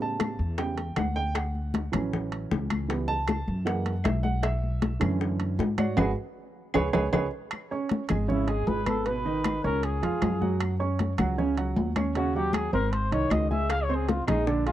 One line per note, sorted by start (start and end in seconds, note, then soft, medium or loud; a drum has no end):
0.00 0.34 A2 medium
0.00 0.36 C#3 medium
0.00 0.37 G3 medium
0.00 0.37 B3 medium
0.00 0.55 A5 medium
0.00 high bongo soft
0.00 high conga soft
0.20 high bongo medium
0.20 high conga medium
0.20 high timbale medium
0.20 claves medium
0.39 0.93 E2 medium
0.39 high conga soft
0.58 0.76 C#3 soft
0.58 0.76 G3 soft
0.58 0.76 B3 medium
0.58 0.95 G5 medium
0.58 high bongo medium
0.58 high conga soft
0.58 high timbale medium
0.78 high bongo soft
0.78 high conga soft
0.78 high timbale medium
0.96 1.87 D2 medium
0.96 1.16 F#5 medium
0.96 high bongo medium
0.96 low bongo medium
0.96 high conga medium
0.96 high timbale medium
0.96 claves medium
1.16 1.35 G5 loud
1.16 high bongo soft
1.35 1.89 F#5 medium
1.35 high bongo medium
1.35 high conga soft
1.35 high timbale medium
1.35 claves medium
1.55 high conga soft
1.74 high bongo medium
1.74 high conga loud
1.74 high timbale medium
1.92 2.47 A1 medium
1.92 2.85 E3 medium
1.92 2.85 F#3 medium
1.92 2.86 C#4 medium
1.92 high conga medium
1.92 low conga medium
1.92 high timbale medium
1.92 claves medium
2.13 high bongo medium
2.13 high conga soft
2.13 low conga medium
2.32 high conga soft
2.32 high timbale medium
2.51 3.42 C#2 medium
2.51 high bongo medium
2.51 low bongo medium
2.51 high conga medium
2.70 high conga medium
2.70 high timbale medium
2.70 claves medium
2.88 3.15 E3 medium
2.88 3.15 G3 soft
2.88 3.15 B3 medium
2.88 high bongo medium
2.88 high conga soft
2.88 high timbale medium
3.08 3.62 A5 loud
3.08 high bongo soft
3.08 high conga soft
3.28 high bongo medium
3.28 high conga loud
3.28 high timbale medium
3.28 claves medium
3.48 4.01 F#2 loud
3.48 high conga soft
3.65 3.91 E3 medium
3.65 3.92 G#3 medium
3.65 3.92 A#3 medium
3.65 4.02 F#5 medium
3.65 high bongo medium
3.65 high conga soft
3.65 high timbale medium
3.86 high bongo soft
3.86 high conga soft
3.86 high timbale medium
4.04 4.96 B1 medium
4.04 4.24 E5 medium
4.04 high bongo medium
4.04 low bongo medium
4.04 high conga medium
4.04 high timbale medium
4.04 claves medium
4.23 4.43 F#5 loud
4.23 high bongo soft
4.23 high conga medium
4.43 4.97 E5 medium
4.43 high bongo medium
4.43 high conga soft
4.43 high timbale medium
4.43 claves medium
4.64 high conga soft
4.82 high bongo medium
4.82 high conga loud
4.82 high timbale medium
5.00 5.55 F#2 medium
5.00 5.56 D3 medium
5.00 5.56 E3 medium
5.00 5.56 A3 medium
5.00 5.56 C#4 medium
5.00 high conga medium
5.00 low conga medium
5.00 high timbale loud
5.00 claves medium
5.21 high bongo medium
5.21 high conga soft
5.40 high conga soft
5.40 high timbale medium
5.59 5.95 G#2 medium
5.59 high bongo medium
5.59 low bongo medium
5.59 high conga medium
5.59 low timbale medium
5.78 5.96 F#4 medium
5.78 5.97 C#5 medium
5.78 5.97 D5 medium
5.78 5.97 F#5 medium
5.78 high conga medium
5.78 high timbale medium
5.78 claves medium
5.97 6.12 G#1 loud
5.97 6.10 F#4 loud
5.97 6.10 G#4 medium
5.97 6.10 B4 medium
5.97 high bongo loud
5.97 low conga loud
5.97 high timbale loud
5.97 claves loud
6.74 6.90 C#2 loud
6.74 6.88 G#4 loud
6.74 6.87 B4 medium
6.74 6.88 C#5 loud
6.74 high bongo loud
6.74 low conga loud
6.74 high timbale medium
6.74 claves loud
6.93 7.09 C#2 medium
6.93 7.06 G#4 loud
6.93 7.06 B4 loud
6.93 7.06 C#5 medium
6.93 high bongo loud
6.93 low conga loud
6.93 high timbale loud
6.93 claves medium
7.13 7.28 C#2 medium
7.13 7.26 G#4 medium
7.13 7.26 B4 medium
7.13 7.26 C#5 medium
7.13 high bongo loud
7.13 low conga loud
7.13 high timbale loud
7.13 claves loud
7.51 high conga soft
7.51 high timbale loud
7.51 claves medium
7.71 8.03 C#4 medium
7.71 8.03 C#5 medium
7.71 8.03 C#6 medium
7.71 high conga soft
7.89 high conga loud
7.89 high timbale medium
8.09 8.64 G#1 medium
8.09 8.25 G#3 medium
8.09 8.26 G#4 medium
8.09 8.26 G#5 medium
8.09 high conga medium
8.09 low conga medium
8.09 high timbale medium
8.09 claves medium
8.28 8.45 C#3 medium
8.28 8.45 C#4 medium
8.28 8.48 E4 medium
8.28 8.45 C#5 medium
8.28 high conga soft
8.28 low conga medium
8.47 8.80 G#3 medium
8.47 8.80 G#4 medium
8.47 8.69 G#4 medium
8.47 8.80 G#5 medium
8.47 high conga soft
8.47 high timbale medium
8.67 9.58 G#1 medium
8.67 8.87 B4 medium
8.67 high conga medium
8.67 low timbale medium
8.86 9.03 B3 medium
8.86 9.08 A4 medium
8.86 9.03 B4 medium
8.86 9.03 B5 medium
8.86 high conga medium
8.86 high timbale medium
8.86 claves medium
9.06 9.22 B2 medium
9.06 9.22 B3 medium
9.06 9.22 B4 medium
9.06 9.64 B4 medium
9.06 high conga soft
9.06 high timbale medium
9.25 9.57 D#3 medium
9.25 9.57 D#4 medium
9.25 9.58 D#5 medium
9.25 high conga soft
9.44 high conga loud
9.44 high timbale loud
9.44 claves medium
9.64 10.00 C#2 loud
9.64 9.96 C#4 medium
9.64 9.86 A#4 medium
9.64 9.96 C#5 medium
9.64 9.96 C#6 medium
9.64 high conga soft
9.83 10.61 G#4 medium
9.83 high conga soft
9.83 high timbale medium
10.02 10.21 F2 medium
10.02 10.34 F3 medium
10.02 10.35 F4 medium
10.02 10.35 F5 medium
10.02 high conga soft
10.02 high timbale medium
10.22 11.13 F#2 medium
10.22 high conga medium
10.22 high timbale medium
10.22 low timbale medium
10.22 claves medium
10.41 10.73 F#3 medium
10.41 10.73 F#4 medium
10.41 10.73 F#5 medium
10.41 high conga medium
10.60 high conga soft
10.60 high timbale medium
10.60 claves medium
10.80 11.12 C#4 medium
10.80 11.12 C#5 medium
10.80 11.12 C#6 medium
10.80 high conga soft
10.99 high conga loud
10.99 high timbale medium
11.18 11.73 C#2 medium
11.18 11.35 F#3 medium
11.18 11.35 F#4 medium
11.18 11.35 F#5 medium
11.18 high conga loud
11.18 low conga medium
11.18 high timbale loud
11.18 claves medium
11.38 11.54 C#3 medium
11.38 11.54 C#4 medium
11.38 11.54 C#5 medium
11.38 high conga soft
11.38 low conga medium
11.57 11.89 F#3 medium
11.57 11.90 F#4 medium
11.57 11.90 F#5 medium
11.57 high conga soft
11.57 high timbale medium
11.76 12.67 D#2 medium
11.76 high conga medium
11.76 low timbale medium
11.96 12.12 C#4 medium
11.96 12.12 C#5 medium
11.96 12.13 C#6 medium
11.96 high conga medium
11.96 high timbale medium
11.96 claves medium
12.15 12.32 C#3 medium
12.15 12.32 C#4 medium
12.15 12.37 F#4 medium
12.15 12.32 C#5 medium
12.15 high conga soft
12.15 high timbale medium
12.35 12.67 F#3 medium
12.35 12.67 F#4 medium
12.35 12.55 G4 medium
12.35 12.67 F#5 medium
12.35 high conga soft
12.53 12.73 G#4 medium
12.53 high conga loud
12.53 high timbale medium
12.53 claves medium
12.73 13.09 G#1 loud
12.73 13.05 C4 medium
12.73 12.93 A#4 medium
12.73 13.05 C5 medium
12.73 13.05 C6 medium
12.73 high conga soft
12.92 13.14 C5 medium
12.92 high conga soft
12.92 high timbale medium
13.12 13.30 C2 medium
13.12 13.44 D#3 medium
13.12 13.44 D#4 medium
13.12 13.33 C#5 medium
13.12 13.44 D#5 medium
13.12 high conga soft
13.12 high timbale medium
13.30 14.22 C#2 medium
13.30 13.50 D#5 medium
13.30 high conga medium
13.30 high timbale medium
13.30 low timbale medium
13.30 claves medium
13.51 13.82 G#3 medium
13.51 13.82 G#4 medium
13.51 13.71 E5 loud
13.51 13.83 G#5 medium
13.51 high conga medium
13.70 13.85 F5 loud
13.70 high bongo medium
13.70 high conga soft
13.70 high timbale medium
13.70 claves medium
13.83 13.97 C#5 medium
13.89 14.21 C4 medium
13.89 14.21 C5 medium
13.89 14.21 C6 medium
13.89 high conga soft
13.95 14.10 G#4 medium
14.09 14.27 F4 medium
14.09 high bongo medium
14.09 high conga medium
14.09 high timbale medium
14.27 14.72 A#1 loud
14.27 14.44 G#3 medium
14.27 14.48 D#4 medium
14.27 14.44 G#4 medium
14.27 14.44 G#5 medium
14.27 high conga medium
14.27 low conga medium
14.27 high timbale medium
14.27 claves medium
14.47 14.63 D3 medium
14.47 14.66 D4 medium
14.47 14.63 D4 medium
14.47 14.63 D5 medium
14.47 high bongo medium
14.47 high conga soft
14.66 14.72 G#3 medium
14.66 14.72 F4 medium
14.66 14.72 G#4 medium
14.66 14.72 G#5 medium
14.66 high conga soft
14.66 high timbale medium